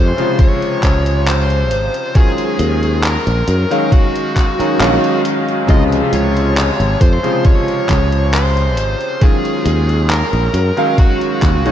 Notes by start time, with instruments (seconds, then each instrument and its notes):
Already playing: fretless electric bass F2, electric grand piano C3 C#3 F3 G#3 F4, lead electric guitar C5
0.17 electric grand piano C3 C#3 F3 G#3 F4, closed hi-hat
0.39 lead electric guitar C#5, kick, closed hi-hat
0.62 closed hi-hat
0.83 fretless electric bass C#2, kick, clap, closed hi-hat
1.06 closed hi-hat
1.27 lead electric guitar C5, clap, closed hi-hat
1.50 closed hi-hat
1.71 fretless electric bass G#1, closed hi-hat
1.94 closed hi-hat
2.14 electric grand piano D#3 F#3 G#3 C#4 F4, lead electric guitar G#4, kick, closed hi-hat
2.38 closed hi-hat
2.59 fretless electric bass D#2, closed hi-hat
2.83 closed hi-hat
3.03 lead electric guitar A#4, clap, closed hi-hat
3.27 fretless electric bass A#1, closed hi-hat
3.48 fretless electric bass F#2, closed hi-hat
3.71 electric grand piano D#3 F#3 G#3 C#4 F5, closed hi-hat
3.92 lead electric guitar F#4, kick, closed hi-hat
4.16 closed hi-hat
4.36 kick, clap, closed hi-hat
4.59 electric grand piano D#3 F#3 G#3 C#4 D#4, muted fretless electric bass stroke, closed hi-hat
4.79 fretless electric bass A#1, electric grand piano D#3 F#3 G#3 C#4 F5, clap, closed hi-hat
5.04 closed hi-hat
5.25 closed hi-hat
5.48 closed hi-hat
5.67 fretless electric bass C#2, electric grand piano C3 C#3 F3 G#3 F4, lead electric guitar D#5, kick, closed hi-hat
5.92 closed hi-hat
6.13 fretless electric bass C#2, lead electric guitar C#5, closed hi-hat
6.37 closed hi-hat
6.57 clap, closed hi-hat
6.80 fretless electric bass G#1, closed hi-hat
7.01 fretless electric bass F2, lead electric guitar C5, kick, closed hi-hat
7.23 electric grand piano C3 C#3 F3 G#3 F4, closed hi-hat
7.45 lead electric guitar C#5, kick, closed hi-hat
7.68 closed hi-hat
7.89 fretless electric bass C#2, kick, clap, closed hi-hat
8.12 closed hi-hat
8.33 lead electric guitar C5, clap, closed hi-hat
8.57 closed hi-hat
8.77 fretless electric bass G#1, closed hi-hat
9.01 closed hi-hat
9.21 electric grand piano D#3 F#3 G#3 C#4 F4, lead electric guitar G#4, kick, closed hi-hat
9.45 closed hi-hat
9.65 fretless electric bass D#2, closed hi-hat
9.89 closed hi-hat
10.10 lead electric guitar A#4, clap, closed hi-hat
10.33 fretless electric bass A#1, closed hi-hat
10.54 fretless electric bass F#2, closed hi-hat
10.77 electric grand piano D#3 F#3 G#3 C#4 F5, closed hi-hat
10.98 lead electric guitar F#4, kick, closed hi-hat
11.21 closed hi-hat
11.42 fretless electric bass D#2, kick, clap, closed hi-hat
11.65 fretless electric bass A#1, electric grand piano D#3 F#3 G#3 C#4 D#4, closed hi-hat